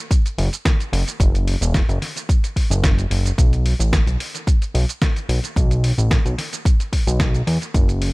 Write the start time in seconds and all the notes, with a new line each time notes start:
0.11 kick, closed hi-hat, shaker
0.26 closed hi-hat, shaker
0.38 F#1, open hi-hat
0.53 closed hi-hat, shaker
0.65 kick, snare, closed hi-hat, shaker
0.80 closed hi-hat, shaker
0.93 F#1, open hi-hat
1.08 closed hi-hat, shaker
1.20 F#1, kick, closed hi-hat, shaker
1.35 closed hi-hat, shaker
1.48 open hi-hat
1.61 E1, closed hi-hat, shaker
1.74 kick, snare, closed hi-hat, shaker
1.89 F#1, closed hi-hat, shaker
2.02 snare, open hi-hat
2.16 closed hi-hat, shaker
2.29 kick, closed hi-hat, shaker
2.44 closed hi-hat, shaker
2.56 kick, open hi-hat
2.70 F#1, closed hi-hat, shaker
2.83 kick, snare, closed hi-hat, shaker
2.99 closed hi-hat, shaker
3.11 F#1, open hi-hat
3.26 closed hi-hat, shaker
3.38 B1, kick, closed hi-hat, shaker
3.53 closed hi-hat, shaker
3.66 open hi-hat
3.80 A1, closed hi-hat, shaker
3.93 kick, snare, closed hi-hat, shaker
4.07 B1, closed hi-hat, shaker
4.20 open hi-hat
4.35 closed hi-hat, shaker
4.47 kick, closed hi-hat, shaker
4.62 closed hi-hat, shaker
4.74 B1, open hi-hat
4.89 closed hi-hat, shaker
5.02 kick, snare, closed hi-hat, shaker
5.16 closed hi-hat, shaker
5.29 B1, open hi-hat
5.44 closed hi-hat, shaker
5.56 B1, kick, closed hi-hat, shaker
5.71 closed hi-hat, shaker
5.84 open hi-hat
5.98 A1, closed hi-hat, shaker
6.11 kick, snare, closed hi-hat, shaker
6.25 B1, closed hi-hat, shaker
6.38 snare, open hi-hat
6.53 closed hi-hat, shaker
6.65 kick, closed hi-hat, shaker
6.80 closed hi-hat, shaker
6.93 kick, open hi-hat
7.07 B1, closed hi-hat, shaker
7.20 kick, snare, closed hi-hat, shaker
7.35 closed hi-hat, shaker
7.47 E2, open hi-hat
7.62 closed hi-hat, shaker
7.74 F#1, kick, closed hi-hat, shaker
7.89 closed hi-hat, shaker
8.02 open hi-hat